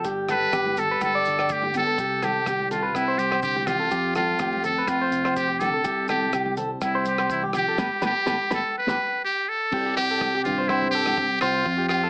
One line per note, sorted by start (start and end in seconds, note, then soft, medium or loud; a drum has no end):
0.04 0.46 G1 medium
0.04 1.50 G3 medium
0.04 0.28 G4 medium
0.04 kick medium
0.04 maracas medium
0.29 0.54 G4 medium
0.29 0.53 A4 medium
0.29 0.81 B4 loud
0.29 cross-stick medium
0.29 closed hi-hat soft
0.29 high conga medium
0.29 low conga medium
0.29 low agogo medium
0.29 maracas medium
0.52 0.94 G1 medium
0.52 0.76 G4 medium
0.52 0.78 G4 medium
0.52 kick medium
0.52 cross-stick medium
0.52 low conga medium
0.52 low agogo medium
0.52 maracas medium
0.66 high conga medium
0.77 1.02 G4 medium
0.77 0.90 A4 medium
0.77 1.03 A4 medium
0.77 closed hi-hat soft
0.77 low conga medium
0.77 maracas medium
0.91 1.14 B4 medium
1.01 1.83 G1 medium
1.01 1.96 G4 medium
1.01 1.54 A4 medium
1.01 kick medium
1.01 cross-stick medium
1.01 high conga medium
1.01 low agogo medium
1.01 maracas medium
1.15 1.38 D5 medium
1.25 1.97 D3 medium
1.25 closed hi-hat soft
1.25 maracas medium
1.38 1.62 D5 medium
1.38 cross-stick medium
1.38 low agogo medium
1.49 1.74 A3 medium
1.49 1.75 G4 medium
1.49 kick medium
1.49 maracas loud
1.62 1.86 G4 medium
1.62 high conga medium
1.74 1.99 B3 medium
1.74 2.26 A4 medium
1.74 closed hi-hat soft
1.74 high conga medium
1.74 low conga medium
1.74 low agogo medium
1.74 maracas medium
1.87 1.98 A4 medium
1.98 2.39 C2 medium
1.98 3.90 C3 medium
1.98 2.22 G4 medium
1.98 kick medium
1.98 maracas loud
2.22 2.94 C4 soft
2.22 2.71 G4 medium
2.22 2.46 A4 medium
2.22 cross-stick medium
2.22 closed hi-hat soft
2.22 high conga medium
2.22 low conga medium
2.22 low agogo medium
2.22 maracas medium
2.46 2.87 C2 medium
2.46 3.17 G3 medium
2.46 2.70 G4 medium
2.46 kick medium
2.46 cross-stick medium
2.46 low conga medium
2.46 low agogo medium
2.46 maracas medium
2.59 high conga medium
2.71 2.97 F4 medium
2.71 2.83 A4 medium
2.71 closed hi-hat soft
2.71 low conga medium
2.71 maracas medium
2.83 3.06 B4 medium
2.95 3.77 C2 medium
2.95 3.93 C4 medium
2.95 3.20 E4 medium
2.95 kick medium
2.95 cross-stick medium
2.95 low agogo medium
2.95 maracas medium
3.08 3.30 C5 medium
3.18 3.42 G3 medium
3.18 3.42 G4 medium
3.18 closed hi-hat soft
3.18 maracas medium
3.31 3.55 C5 medium
3.31 cross-stick medium
3.31 low agogo medium
3.43 3.66 D3 medium
3.43 3.68 G4 medium
3.43 kick medium
3.43 maracas medium
3.56 3.79 G4 medium
3.56 high conga medium
3.66 3.91 E3 medium
3.66 4.15 F4 medium
3.66 cross-stick medium
3.66 closed hi-hat soft
3.66 high conga medium
3.66 low conga medium
3.66 low agogo medium
3.66 maracas medium
3.80 3.91 A4 medium
3.91 4.33 F2 medium
3.91 5.36 F3 medium
3.91 4.16 C4 medium
3.91 4.15 G4 medium
3.91 muted clean electric guitar stroke medium
3.91 kick medium
3.91 maracas medium
4.15 4.63 C4 medium
4.15 4.61 F4 medium
4.15 4.39 A4 medium
4.15 cross-stick medium
4.15 closed hi-hat soft
4.15 high conga medium
4.15 low conga medium
4.15 low agogo medium
4.15 maracas medium
4.39 4.81 F2 medium
4.39 5.82 A3 medium
4.39 4.63 G4 medium
4.39 kick medium
4.39 cross-stick medium
4.39 low conga medium
4.39 low agogo medium
4.39 maracas medium
4.53 high conga medium
4.63 4.88 C4 medium
4.63 4.77 A4 medium
4.63 4.90 A4 medium
4.63 closed hi-hat soft
4.63 low conga medium
4.63 maracas medium
4.78 5.01 B4 medium
4.88 5.70 F2 medium
4.88 5.85 C4 medium
4.88 5.36 F4 medium
4.88 kick medium
4.88 cross-stick medium
4.88 low agogo medium
4.88 maracas medium
5.01 5.23 C5 medium
5.11 5.82 C3 medium
5.11 closed hi-hat soft
5.11 maracas medium
5.25 5.48 C5 medium
5.25 cross-stick medium
5.25 low agogo medium
5.36 5.61 G4 medium
5.36 muted clean electric guitar stroke medium
5.36 kick medium
5.36 maracas loud
5.48 5.72 G4 medium
5.59 5.85 D3 medium
5.59 6.09 A4 medium
5.59 closed hi-hat soft
5.59 high conga medium
5.59 low conga medium
5.59 low agogo medium
5.59 maracas medium
5.74 5.84 A4 medium
5.84 6.26 C2 medium
5.84 7.76 C3 medium
5.84 6.32 G3 medium
5.84 6.09 E4 medium
5.84 6.08 G4 medium
5.84 7.82 G4 medium
5.84 kick medium
5.84 maracas loud
6.08 7.76 E4 medium
6.08 6.55 G4 medium
6.08 6.32 A4 medium
6.08 cross-stick medium
6.08 closed hi-hat soft
6.08 high conga medium
6.08 low conga medium
6.08 low agogo medium
6.08 maracas medium
6.32 6.75 C2 medium
6.32 6.81 G3 medium
6.32 6.57 G4 medium
6.32 kick medium
6.32 cross-stick medium
6.32 low conga medium
6.32 low agogo medium
6.32 maracas medium
6.46 high conga medium
6.57 6.70 A4 medium
6.57 7.76 C5 medium
6.57 closed hi-hat soft
6.57 low conga medium
6.57 maracas medium
6.81 7.64 C2 medium
6.81 7.05 G3 medium
6.81 7.05 E4 medium
6.81 kick medium
6.81 cross-stick medium
6.81 low agogo medium
6.81 maracas medium
6.95 7.18 C5 medium
7.05 7.29 G3 medium
7.05 7.30 G4 medium
7.05 closed hi-hat soft
7.05 maracas medium
7.18 7.42 C5 medium
7.18 cross-stick medium
7.18 low agogo medium
7.29 7.54 E3 medium
7.29 7.42 E4 medium
7.29 kick medium
7.29 maracas medium
7.43 7.66 G4 medium
7.43 high conga medium
7.53 7.79 F3 medium
7.53 8.01 G4 medium
7.53 cross-stick medium
7.53 closed hi-hat soft
7.53 high conga medium
7.53 low conga medium
7.53 low agogo medium
7.53 maracas medium
7.68 7.77 A4 medium
7.78 7.88 G1 medium
7.78 7.87 G3 medium
7.78 7.87 A3 medium
7.78 7.87 B3 medium
7.78 7.87 G4 medium
7.78 7.87 A4 medium
7.78 7.87 B4 medium
7.78 kick medium
7.78 snare medium
7.78 high conga medium
7.78 low agogo medium
7.78 maracas medium
8.02 8.12 G1 medium
8.02 8.12 G3 medium
8.02 8.12 A3 medium
8.02 8.13 B3 medium
8.02 8.11 G4 medium
8.02 8.49 G4 medium
8.02 8.11 A4 medium
8.02 8.11 B4 medium
8.02 kick medium
8.02 snare medium
8.02 high conga medium
8.02 low agogo medium
8.02 maracas medium
8.26 8.37 G1 medium
8.26 8.35 G3 medium
8.26 8.36 A3 medium
8.26 8.35 B3 medium
8.26 8.35 G4 medium
8.26 8.35 A4 loud
8.26 8.35 B4 medium
8.26 kick medium
8.26 snare medium
8.26 high conga medium
8.26 low agogo medium
8.26 maracas medium
8.50 8.61 G1 medium
8.50 8.60 G3 medium
8.50 8.59 A3 medium
8.50 8.59 B3 medium
8.50 8.59 G4 medium
8.50 8.59 A4 medium
8.50 8.75 A4 medium
8.50 8.59 B4 medium
8.50 kick medium
8.50 snare medium
8.50 high conga medium
8.50 low agogo medium
8.50 maracas medium
8.78 9.22 B4 medium
8.87 8.97 G1 medium
8.87 8.95 G3 medium
8.87 8.95 A3 medium
8.87 8.95 B3 medium
8.87 8.96 G4 medium
8.87 8.96 A4 medium
8.87 8.96 B4 medium
8.87 kick medium
8.87 snare medium
8.87 high conga medium
8.87 low agogo medium
8.87 maracas medium
9.25 9.50 G4 medium
9.49 9.96 A4 loud
9.71 10.33 C2 medium
9.71 11.63 C3 medium
9.71 10.43 G3 medium
9.71 9.96 C4 medium
9.71 9.85 G4 medium
9.71 11.64 G4 medium
9.71 kick medium
9.71 crash medium
9.86 10.08 G4 medium
9.96 10.69 C4 medium
9.96 10.41 G4 loud
9.96 cross-stick medium
9.96 closed hi-hat medium
9.96 low agogo medium
10.11 10.33 A4 medium
10.21 kick loud
10.21 cross-stick medium
10.21 high conga medium
10.21 low agogo medium
10.35 10.57 G4 medium
10.44 11.27 G2 medium
10.44 10.91 G3 medium
10.44 10.70 F4 medium
10.44 closed hi-hat soft
10.44 low conga medium
10.58 10.69 C5 medium
10.68 11.18 C4 medium
10.68 10.90 E4 loud
10.68 10.93 C5 medium
10.68 kick medium
10.68 cross-stick medium
10.68 low agogo medium
10.82 high conga medium
10.91 11.63 G3 medium
10.91 11.37 G4 loud
10.91 11.17 A4 medium
10.91 closed hi-hat soft
11.06 cross-stick medium
11.06 high conga medium
11.06 low agogo medium
11.17 11.41 C4 medium
11.17 muted clean electric guitar stroke medium
11.17 kick medium
11.41 11.62 C2 medium
11.41 11.66 C4 medium
11.41 11.86 F4 medium
11.41 11.65 C5 medium
11.41 cross-stick medium
11.41 closed hi-hat soft
11.41 low conga medium
11.41 low agogo medium
11.65 12.10 F2 medium
11.65 12.10 F3 medium
11.65 11.90 C4 medium
11.65 11.78 F4 medium
11.65 kick medium
11.78 12.01 G4 medium
11.88 12.10 C4 medium
11.88 12.10 F4 medium
11.88 cross-stick medium
11.88 closed hi-hat soft
11.88 low agogo medium
12.03 12.10 A4 medium